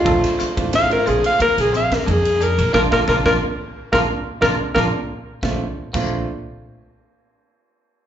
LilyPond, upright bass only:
\new Staff \with { instrumentName = "Upright bass" } { \clef bass \time 4/4 \key bes \major \tempo 4 = 89 bes,,16 r8 a,,8. bes,,16 r8 bes,,8. f,8. bes,,16 | bes,,16 bes,,16 bes,,16 bes,,16 r8. bes,,16 r8 bes,,16 r16 bes,,16 r8. | bes,,16 r8 bes,,8 r2 r8. | }